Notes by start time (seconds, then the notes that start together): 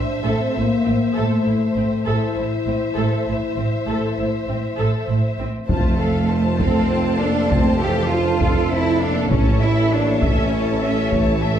Already playing: D4 C5 E5
0.25 A1 A2 C4 A4
0.55 A1 A2 A#3 E4
0.85 A1 A2 C4
1.15 A1 A2 A3 A4
1.45 A1 A2 E4
1.76 A1 A2 C4
2.06 A1 A2 E4 A4 C5 E5
2.36 A1 A2 E4
2.67 A1 A2 C4
2.96 A1 A2 A4
3.27 A1 A2 E4
3.57 A1 A2 C4
3.87 A1 A2 A4
4.18 A1 A2 E4
4.48 A1 A2 C4
4.78 A1 A2 A4
5.08 A1 A2 E4
5.39 A1 A2 C4
5.68 F1 F2 F3 A3 C4 F4 A4 C5 A5, taiko
5.97 A4 F5
6.29 F4 C5 A5
6.59 A3 C4 A4 F5, taiko
6.89 F4 C5 A5
7.19 A#3 D4 A4 F5
7.50 A3 C4 F4 C5 A5, taiko
7.80 E3 G4 A4 F5
8.10 D4 F4 C5 A5
8.41 A4 F5, taiko
8.71 F3 C4 E4 C5 A5
9.00 A#3 D4 A4 F5
9.31 A1 E3 A3 C#4 E4 A4 C#5 E5 A5, taiko
9.61 E4 A4 E5
9.65 C#4
9.90 A#3 D4 E4 C#5 A5
10.22 A3 C#4 A4 E5, taiko
10.51 E4 C#5
10.55 A5
10.80 A3 C#4 A4 E5
10.84 E5
11.10 E3 A3 E4 C#5, taiko
11.15 A5
11.41 A4 E5